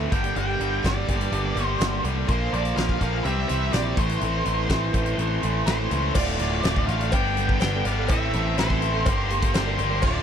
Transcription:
Already playing: A2 E3 A3
0.00 C4 E4 A4
0.11 G1 G2 D3 G3 A#3 D4 G4 G5, kick, closed hi-hat
0.23 G3 A#3 D4 G4, closed hi-hat
0.35 G1 G2 D3 G3 A#3 D4 G4 G5, closed hi-hat
0.60 G1 G2 D3 G3, closed hi-hat
0.82 G1 G2 D3 G3 A#3 D4 G4 D5, kick, snare, closed hi-hat
0.95 G3 A#3 D4 G4
1.07 G1 G2 D3 G3 A#3 D4 G4, kick, closed hi-hat
1.21 closed hi-hat
1.31 G1 G2 D3 G3 A#3 D4 G4, closed hi-hat
1.42 G3 A#3 D4 G4
1.54 G1 G2 D3 G3 A#3 D4 G4, closed hi-hat
1.65 C5
1.78 G1 G2 D3 G3 A#3 D4 G4, snare, closed hi-hat
1.91 G3 A#3 D4 G4
2.03 C2 G2 D3 G3 A#3 D4 G4, closed hi-hat
2.15 G3 A#3 D4 G4
2.27 A#1 A#2 D3 F3 A#3 D4 F4 C5, kick, closed hi-hat
2.52 A#1 A#2 F3 A#3 D5, closed hi-hat
2.65 closed hi-hat
2.75 A#1 A#2 D3 F3 A#3 D4 F4 F5, snare, closed hi-hat
2.89 kick
2.99 A#1 A#2 D3 F3 A#3 D4 F4 F5, kick, closed hi-hat
3.24 C2 C3 E3 G3 C4 E4 E5, closed hi-hat
3.35 G3 C4 E4
3.46 C2 C3 E3 G3 C4 E4 E5, closed hi-hat
3.71 A#1 C3 E3 G3 C4 E4 D5, snare, closed hi-hat
3.84 G3 C4 E4
3.96 A1 A2 E3 A3 C4 E4 C5, kick, closed hi-hat
4.09 A3 C4 E4, closed hi-hat
4.21 A1 A2 E3 A3 C4 E4, closed hi-hat
4.44 A1 A2 E3 A3, closed hi-hat
4.69 A1 A2 E3 A3 C4 E4, kick, snare, closed hi-hat
4.92 A1 A2 E3 A3 C4 E4, kick, closed hi-hat
5.06 closed hi-hat
5.18 A1 A2 E3 A3 C4 E4, closed hi-hat
5.29 A3 C4 E4
5.42 A1 A2 E3 A3 C4 E4, closed hi-hat
5.66 A1 A2 E3 A3 C4 E4 C5, snare, closed hi-hat
5.78 A3 C4 E4
5.90 C#2 A2 E3 A3 C4 E4, closed hi-hat
6.02 A3 C4 E4
6.14 D1 D2 A2 D3 A3 D4 F4 D5, kick, crash, cowbell
6.39 D1 D3 A3 D4 F4, closed hi-hat
6.64 D1 D2 A2 D3 A3 D4 F4, snare, closed hi-hat, cowbell
6.76 kick
6.87 A1 D3 A3 D4 F4 F5, closed hi-hat
7.01 A3 D4 F4, closed hi-hat
7.12 G1 G2 D3 G3 B3 D4 G4 A4 G5, kick, closed hi-hat, cowbell
7.36 G3 B3 D4 A4, closed hi-hat
7.49 kick
7.60 G1 G3 B3 D4 G4 A4, snare, closed hi-hat, cowbell
7.74 B3 D4 A4
7.85 G#1 G3 B3 D4 G4 A4 F5, closed hi-hat
7.97 B3 D4 A4
8.08 A1 A2 E3 A3 C4 E4 A4 E5, kick, closed hi-hat, cowbell
8.33 A1 E3 A3 C4 E4 A4, closed hi-hat
8.58 A1 A2 E3 A3 C4 E4 A4 C5, snare, closed hi-hat, cowbell
8.70 kick
8.81 E3 A3 C4 E4 A4, closed hi-hat
8.93 C4 E4 A4
9.05 G1 G2 D3 G3 A#3 D4 G4 A#4, kick, closed hi-hat, cowbell
9.29 G3 A#3 D4 A#4, closed hi-hat
9.42 kick, closed hi-hat
9.54 G1 G2 D3 G3 A#3 D4 G4 A#4 C5, snare, closed hi-hat, cowbell
9.66 G3 A#3 D4 A#4
9.78 G1 G3 A#3 D4 G4 A#4, closed hi-hat
9.89 G3 A#3 D4 A#4
10.02 D1 D2 A2 D3 A3 D4 F4 A4 D5, kick, cowbell, crash

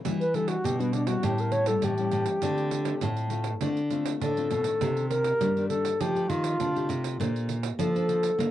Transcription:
0.05 E3 G3 D4 F#4, pandeiro
0.20 B4, pandeiro
0.34 G3 D4 F#4 A4, pandeiro
0.48 F#4, pandeiro
0.64 B2 G4, pandeiro
0.79 G3 B3 D4 F#4, pandeiro
0.93 D4, pandeiro
1.07 G3 C#4 E4 F#4, pandeiro
1.23 A2 G4, pandeiro
1.38 A#4, pandeiro
1.52 C#5, pandeiro
1.66 G3 C#4 E4 A4, pandeiro
1.82 A2 E3 G4, pandeiro
1.98 G3 C#4 E4, pandeiro
2.11 A2, pandeiro
2.26 pandeiro
2.42 D3 A3 C4 F4, pandeiro
2.58 pandeiro
2.71 pandeiro
2.85 A3 C4 F4, pandeiro
3.01 A2, pandeiro
3.17 pandeiro
3.30 A3 C4 F4, pandeiro
3.44 pandeiro
3.61 D3 A3 C4 F4, pandeiro
3.77 pandeiro
3.91 A3 C4 F4, pandeiro
4.06 pandeiro
4.20 A2 D3 A4, pandeiro
4.37 A3 C4 F4, pandeiro
4.51 B2, pandeiro
4.64 D#3 A#3 D4, pandeiro
4.81 C3, pandeiro
4.97 pandeiro
5.09 A#4, pandeiro
5.24 pandeiro
5.41 G2 D#3 G3 A#3 D4, pandeiro
5.56 D#3 A#3 D4, pandeiro
5.69 D#3 A#3 D4 A4, pandeiro
5.85 pandeiro
6.00 F3 A3 D#4 G4, pandeiro
6.15 A3 D#4 G4, pandeiro
6.29 D#3 F4, pandeiro
6.44 pandeiro
6.60 C3 D3, pandeiro
6.75 A3 D#4 G4, pandeiro
6.89 C3, pandeiro
7.04 pandeiro
7.20 A#2 A#3 D4 A4 C5, pandeiro
7.36 pandeiro
7.49 pandeiro
7.63 pandeiro
7.79 F3 D4 A4 C5, pandeiro
7.95 D4 A4 C5, pandeiro
8.08 D4 A4 C5, pandeiro
8.23 pandeiro
8.39 A#3, pandeiro

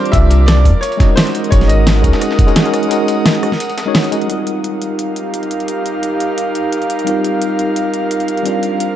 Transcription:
Already playing: C4 D4 F4 A#4 C5 D6
0.05 closed hi-hat
0.11 C2 G3 C4 D4 F4 E5, kick, closed hi-hat
0.16 A#4
0.31 closed hi-hat
0.46 D5, snare, closed hi-hat
0.64 F2 G3 C4 D4 F4 A#4, kick, closed hi-hat, open hi-hat
0.81 A#4 C#5 F#5 D#6, closed hi-hat
0.92 closed hi-hat
0.97 G#3 C#4 D#4 F#4, kick, snare, closed hi-hat
1.02 D#5
1.16 C5, snare, closed hi-hat, open hi-hat
1.27 closed hi-hat
1.35 closed hi-hat
1.44 closed hi-hat
1.50 G#1 G#3 C#4 D#4 F#4 C#5, kick, closed hi-hat
1.55 A#4
1.61 snare, closed hi-hat
1.68 D#5, closed hi-hat
1.87 snare, closed hi-hat
2.02 C#2 G#3 C#4 D#4 F#4, kick, closed hi-hat
2.07 A#4
2.13 snare
2.21 cross-stick, closed hi-hat
2.31 snare
2.39 kick, closed hi-hat
2.47 G#3 C#4 D#4 F#4 A#4, closed hi-hat
2.56 snare, closed hi-hat
2.64 G#3 C#4 D#4 F#4 A#4, closed hi-hat
2.73 cross-stick, closed hi-hat
2.83 closed hi-hat
2.88 G#3 C#4 D#4 F#4, closed hi-hat
2.93 A#4
3.08 closed hi-hat
3.26 snare, closed hi-hat
3.35 closed hi-hat
3.42 G#3 C#4 D#4 F#4 A#4, cross-stick, open hi-hat
3.52 snare
3.60 closed hi-hat
3.69 closed hi-hat
3.78 snare, closed hi-hat
3.85 G#3 C#4 D#4 F#4 C#5
3.95 snare, closed hi-hat, open hi-hat
4.04 closed hi-hat
4.11 G#3 C#4 D#4 F#4 A#4, closed hi-hat
4.21 closed hi-hat
4.27 G3 C4 D#4 F4 G4 A#4 F5, closed hi-hat
4.32 A#4
4.47 closed hi-hat
4.64 closed hi-hat
4.82 closed hi-hat
4.99 closed hi-hat
5.16 closed hi-hat
5.34 closed hi-hat
5.43 closed hi-hat
5.51 closed hi-hat
5.60 closed hi-hat
5.68 closed hi-hat
5.86 closed hi-hat
6.03 closed hi-hat
6.20 closed hi-hat
6.38 closed hi-hat
6.55 closed hi-hat
6.72 closed hi-hat
6.82 closed hi-hat
6.90 closed hi-hat
6.99 closed hi-hat
7.04 G3 C4 D#4 F4, closed hi-hat
7.10 A#4
7.24 closed hi-hat
7.42 closed hi-hat
7.59 closed hi-hat
7.76 closed hi-hat
7.94 closed hi-hat
8.11 closed hi-hat
8.20 closed hi-hat
8.28 closed hi-hat
8.37 closed hi-hat
8.43 G3 C4 D4 F4 C5, closed hi-hat
8.48 A#4
8.63 closed hi-hat
8.80 closed hi-hat

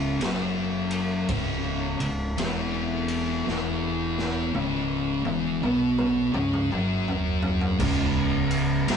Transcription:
Already playing: C#1 C#2 C#3
0.20 F#1 F#2 F#3, snare, ride
0.91 ride
1.29 C#1 C#2 C#3, kick, ride
2.00 C#1 C#2, ride
2.37 E1 E2 E3, snare, ride
3.08 ride
3.46 E1 E2 E3, snare
4.18 snare
4.54 C#1 C#2 C#3, high tom
5.25 E1 E2 E3, high tom
5.63 B1 B2 B3, mid tom
5.98 mid tom
6.33 C#2 C#3 C#4, mid tom
6.53 mid tom
6.72 F#1 F#2 F#3, mid tom
7.08 floor tom
7.42 floor tom
7.61 floor tom
7.80 C#1 C#2 C#3, kick, crash
8.51 crash
8.88 G1 G2 G3, snare, crash

